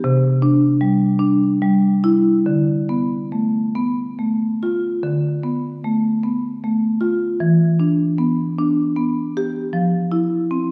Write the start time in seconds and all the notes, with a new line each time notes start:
0.04 C3
0.42 D4
0.81 G3
1.19 D4
1.62 G3
2.04 E4
2.46 D3
2.89 B3
3.32 A3
3.75 B3
4.19 A3
4.63 F4
5.03 D3
5.43 B3
5.84 A3
6.24 B3
6.64 A3
7.01 F4
7.40 E3
7.80 D4
8.18 B3
8.59 D4
8.97 B3
9.37 G4
9.73 F3
10.12 E4
10.51 C4